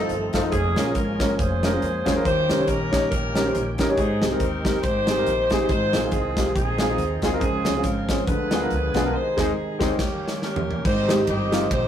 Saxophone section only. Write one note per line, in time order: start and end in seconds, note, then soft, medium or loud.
0.00 0.49 C4 medium
0.00 0.49 D#4 medium
0.00 0.30 A4 medium
0.51 0.96 C#4 medium
0.51 0.92 G#4 loud
0.96 1.79 C#4 medium
0.96 1.39 A#4 medium
1.39 2.22 G#4 medium
1.39 2.24 C5 loud
2.25 2.69 G4 medium
2.25 2.65 C5 loud
2.68 3.11 C#4 medium
2.68 3.11 G4 medium
2.68 3.09 A#4 medium
3.11 3.79 C#4 medium
3.11 3.79 G4 medium
3.11 3.74 A#4 medium
3.96 4.80 C4 medium
3.96 4.40 D#4 medium
3.96 4.37 G#4 medium
4.40 4.83 D#4 medium
4.40 4.83 G4 medium
4.40 4.83 A#4 medium
4.82 5.66 D#4 medium
4.82 5.66 G4 medium
4.82 5.68 C5 loud
5.69 6.12 D#4 medium
5.69 6.52 F4 medium
5.69 6.09 C5 loud
6.12 6.55 C4 medium
6.12 6.55 D#4 medium
6.12 6.53 G#4 medium
6.54 7.38 C4 medium
6.54 7.38 D#4 medium
6.54 7.18 G#4 medium
7.40 8.23 C4 medium
7.40 7.84 F4 medium
7.40 7.81 G#4 medium
7.84 8.25 F4 medium
7.84 8.27 A#4 medium
8.27 9.10 F4 medium
8.27 9.09 G#4 medium
8.27 9.13 B4 medium
9.13 9.96 D#4 medium
9.13 9.54 G#4 medium
9.13 9.47 C5 medium
9.46 9.56 A#4 medium
9.55 9.80 G#4 medium
9.79 10.62 A#3 medium
9.79 10.41 C#4 medium
9.79 10.37 G4 medium
10.42 10.82 C#4 medium
10.42 10.82 G4 medium
10.42 10.83 A#4 medium
10.85 11.67 D#4 medium
10.85 11.16 G4 medium
10.85 11.16 C5 loud
11.28 11.70 G4 medium
11.28 11.71 C5 medium
11.28 11.72 D#5 loud
11.71 11.88 D#4 medium
11.71 11.88 G4 medium
11.71 11.88 C5 loud